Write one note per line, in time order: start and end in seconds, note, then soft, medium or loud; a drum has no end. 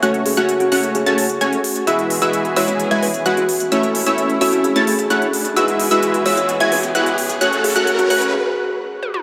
0.00 0.35 F#1 medium
0.00 0.34 A3 medium
0.00 1.85 A3 medium
0.00 0.34 C#4 medium
0.00 1.85 C#4 medium
0.00 3.68 F#4 medium
0.00 0.34 F#4 medium
0.00 0.34 C#5 medium
0.00 0.34 F#5 medium
0.00 0.34 F#6 medium
0.00 closed hi-hat soft
0.14 closed hi-hat soft
0.26 0.35 G#4 medium
0.26 open hi-hat loud
0.37 0.70 F#1 loud
0.37 0.69 A3 medium
0.37 0.69 C#4 medium
0.37 0.50 F#4 medium
0.37 0.69 F#4 medium
0.37 0.69 C#5 medium
0.37 0.69 F#5 loud
0.37 0.69 F#6 loud
0.37 closed hi-hat soft
0.49 closed hi-hat soft
0.60 0.68 F#4 medium
0.60 closed hi-hat soft
0.72 1.04 F#1 medium
0.72 1.04 A3 medium
0.72 1.04 C#4 medium
0.72 1.04 F#4 medium
0.72 0.79 F#4 medium
0.72 1.04 C#5 medium
0.72 1.04 F#5 loud
0.72 1.04 F#6 loud
0.72 open hi-hat loud
0.83 closed hi-hat medium
0.95 1.60 G#4 medium
0.95 closed hi-hat soft
1.06 1.39 F#1 medium
1.06 1.23 A3 loud
1.06 1.23 C#4 medium
1.06 1.23 F#4 medium
1.06 1.23 C#5 medium
1.06 1.23 A5 loud
1.06 1.23 A6 loud
1.06 closed hi-hat soft
1.18 open hi-hat loud
1.30 closed hi-hat soft
1.41 1.56 F#1 loud
1.41 1.58 A3 medium
1.41 1.58 C#4 medium
1.41 1.58 F#4 medium
1.41 1.58 C#5 medium
1.41 1.58 G#5 medium
1.41 1.58 G#6 medium
1.41 closed hi-hat medium
1.53 closed hi-hat soft
1.64 open hi-hat medium
1.76 closed hi-hat soft
1.87 2.20 E1 loud
1.87 3.70 E3 medium
1.87 2.19 G#3 medium
1.87 3.70 B3 medium
1.87 2.19 E4 medium
1.87 2.19 F#4 medium
1.87 3.70 G#4 medium
1.87 2.19 B4 medium
1.87 2.19 E5 medium
1.87 2.19 E6 medium
1.87 closed hi-hat soft
1.87 riser medium
1.99 closed hi-hat soft
2.10 open hi-hat loud
2.22 2.54 E1 loud
2.22 2.54 G#3 medium
2.22 2.54 E4 medium
2.22 2.54 F#4 medium
2.22 2.54 B4 medium
2.22 2.54 E5 loud
2.22 2.54 E6 loud
2.22 closed hi-hat soft
2.33 closed hi-hat soft
2.45 closed hi-hat soft
2.56 2.89 E1 loud
2.56 2.88 G#3 medium
2.56 2.88 E4 medium
2.56 2.88 F#4 medium
2.56 2.88 B4 medium
2.56 2.64 C#5 medium
2.56 2.88 E5 loud
2.56 2.88 E6 loud
2.56 open hi-hat medium
2.68 2.75 C#5 medium
2.68 closed hi-hat medium
2.80 closed hi-hat soft
2.91 3.23 E1 loud
2.91 3.08 G#3 loud
2.91 3.08 E4 medium
2.91 3.08 F#4 medium
2.91 3.08 B4 loud
2.91 3.00 E5 medium
2.91 3.08 G#5 loud
2.91 3.08 G#6 loud
2.91 closed hi-hat soft
3.03 3.16 B4 medium
3.03 open hi-hat loud
3.14 closed hi-hat soft
3.26 3.40 E1 loud
3.26 3.43 G#3 medium
3.26 3.43 E4 medium
3.26 3.43 F#4 medium
3.26 3.33 F#4 medium
3.26 3.43 B4 medium
3.26 3.43 F#5 medium
3.26 3.43 F#6 medium
3.26 closed hi-hat soft
3.37 3.45 F#4 medium
3.37 closed hi-hat soft
3.49 open hi-hat medium
3.60 closed hi-hat medium
3.72 4.04 A1 loud
3.72 5.55 A3 medium
3.72 4.04 A3 medium
3.72 5.55 C#4 medium
3.72 4.04 C#4 medium
3.72 5.55 E4 medium
3.72 4.04 E4 medium
3.72 4.04 C#5 medium
3.72 4.04 E5 medium
3.72 4.04 E6 medium
3.72 closed hi-hat medium
3.83 closed hi-hat soft
3.95 open hi-hat loud
4.06 4.39 A1 loud
4.06 4.38 A3 medium
4.06 4.38 C#4 medium
4.06 4.38 E4 medium
4.06 4.38 C#5 medium
4.06 4.38 E5 loud
4.06 4.38 E6 loud
4.06 closed hi-hat soft
4.18 closed hi-hat medium
4.30 closed hi-hat soft
4.41 4.73 A1 loud
4.41 4.73 A3 medium
4.41 4.73 C#4 medium
4.41 4.73 E4 medium
4.41 4.48 F#4 medium
4.41 4.73 C#5 medium
4.41 4.73 E5 loud
4.41 4.73 E6 loud
4.41 open hi-hat medium
4.53 4.60 F#4 medium
4.53 closed hi-hat medium
4.64 4.77 G#4 medium
4.64 closed hi-hat medium
4.76 5.08 A1 loud
4.76 4.93 A3 loud
4.76 4.93 C#4 medium
4.76 4.93 E4 medium
4.76 4.93 C#5 medium
4.76 4.93 A5 loud
4.76 4.93 A6 loud
4.76 closed hi-hat soft
4.87 4.95 G#4 medium
4.87 open hi-hat loud
4.99 5.06 G#4 medium
4.99 closed hi-hat medium
5.10 5.25 A1 loud
5.10 5.27 A3 medium
5.10 5.27 C#4 medium
5.10 5.27 E4 medium
5.10 5.27 C#5 medium
5.10 5.27 F#5 medium
5.10 5.27 F#6 medium
5.10 closed hi-hat medium
5.22 closed hi-hat soft
5.33 open hi-hat medium
5.45 closed hi-hat medium
5.56 5.89 E1 loud
5.56 7.39 E3 medium
5.56 5.88 G#3 medium
5.56 7.39 B3 medium
5.56 5.88 E4 medium
5.56 8.31 F#4 medium
5.56 5.88 F#4 medium
5.56 7.39 G#4 medium
5.56 5.88 B4 medium
5.56 5.88 E5 medium
5.56 5.88 E6 medium
5.56 closed hi-hat medium
5.68 closed hi-hat soft
5.80 open hi-hat loud
5.91 6.23 E1 medium
5.91 6.23 G#3 medium
5.91 6.23 E4 medium
5.91 6.23 F#4 medium
5.91 6.23 B4 medium
5.91 6.23 E5 loud
5.91 6.23 E6 loud
5.91 closed hi-hat medium
6.03 closed hi-hat medium
6.14 closed hi-hat soft
6.26 6.58 E1 loud
6.26 6.58 G#3 medium
6.26 6.58 E4 medium
6.26 6.58 F#4 medium
6.26 6.58 B4 medium
6.26 6.33 C#5 medium
6.26 6.58 E5 loud
6.26 6.58 E6 loud
6.26 open hi-hat medium
6.37 6.45 C#5 medium
6.37 closed hi-hat medium
6.49 closed hi-hat medium
6.60 6.93 E1 loud
6.60 6.77 G#3 loud
6.60 6.77 E4 loud
6.60 6.77 F#4 medium
6.60 6.77 B4 medium
6.60 6.70 E5 medium
6.60 6.77 G#5 loud
6.60 6.77 G#6 loud
6.60 closed hi-hat soft
6.72 6.85 B4 loud
6.72 open hi-hat loud
6.83 closed hi-hat medium
6.95 7.10 E1 loud
6.95 7.12 G#3 medium
6.95 7.12 E4 medium
6.95 7.12 F#4 medium
6.95 7.12 B4 medium
6.95 7.12 F#5 medium
6.95 7.12 F#6 loud
6.95 closed hi-hat medium
7.06 closed hi-hat soft
7.18 open hi-hat medium
7.29 closed hi-hat medium
7.41 7.73 F#1 loud
7.41 8.32 A3 medium
7.41 7.73 A3 medium
7.41 8.32 C#4 medium
7.41 7.73 C#4 medium
7.41 7.73 F#4 medium
7.41 7.73 C#5 medium
7.41 7.73 F#5 medium
7.41 7.73 F#6 medium
7.41 closed hi-hat medium
7.53 closed hi-hat soft
7.64 7.73 G#4 medium
7.64 open hi-hat loud
7.76 8.08 F#1 loud
7.76 8.08 A3 medium
7.76 8.08 C#4 medium
7.76 7.89 F#4 medium
7.76 8.08 F#4 medium
7.76 8.08 C#5 medium
7.76 8.08 F#5 loud
7.76 8.08 F#6 loud
7.76 closed hi-hat medium
7.87 closed hi-hat medium
7.99 8.06 F#4 medium
7.99 closed hi-hat soft
8.10 8.33 F#1 loud
8.10 8.33 A3 medium
8.10 8.33 C#4 medium
8.10 8.18 F#4 medium
8.10 8.33 F#4 medium
8.10 8.33 C#5 medium
8.10 8.33 F#5 loud
8.10 8.33 F#6 loud
8.10 open hi-hat medium
8.22 closed hi-hat medium
8.33 8.98 G#4 loud
9.03 high tom medium
9.14 mid tom medium